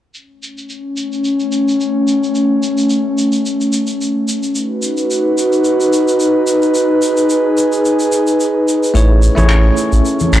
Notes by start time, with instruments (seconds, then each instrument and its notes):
0.14 analog synth pad A3 C#4, shaker
0.43 shaker
0.58 shaker
0.69 shaker
0.97 shaker
1.13 shaker
1.24 shaker
1.40 shaker
1.52 shaker
1.68 shaker
1.80 shaker
2.08 shaker
2.23 shaker
2.35 shaker
2.63 shaker
2.78 shaker
2.90 shaker
3.18 shaker
3.32 shaker
3.46 shaker
3.61 shaker
3.73 shaker
3.87 shaker
4.01 shaker
4.28 shaker
4.43 shaker
4.55 analog synth pad D#4 F#4 B4, shaker
4.82 shaker
4.97 shaker
5.11 shaker
5.38 shaker
5.53 shaker
5.64 shaker
5.81 shaker
5.93 shaker
6.08 shaker
6.20 shaker
6.47 shaker
6.62 shaker
6.74 analog synth pad G#4, shaker
7.02 shaker
7.17 shaker
7.30 shaker
7.57 shaker
7.72 shaker
7.85 shaker
8.00 shaker
8.12 shaker
8.27 shaker
8.40 shaker
8.68 shaker
8.83 shaker
8.94 sub bass A1, tine electric piano A3 E4 G#4 C#5, analog synth pad A3 C#4, shaker
9.22 shaker
9.35 sub bass A1, tine electric piano A3 E4 G#4 C#5, high conga, shaker
9.49 finger snap, shaker
9.77 shaker
9.92 sub bass A1, shaker
10.05 shaker
10.20 high conga, shaker
10.32 sub bass A1, finger snap, shaker